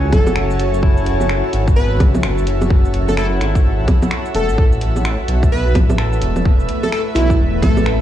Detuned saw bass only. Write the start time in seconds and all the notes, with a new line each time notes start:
Already playing: C#2
0.12 F#1
1.53 G#1
2.00 C#2
2.23 F#1
3.41 G#1
4.35 E1
4.49 G#1
4.58 A1
5.28 B1
5.75 A1
6.22 E1
7.16 B1
7.39 E1
7.63 A1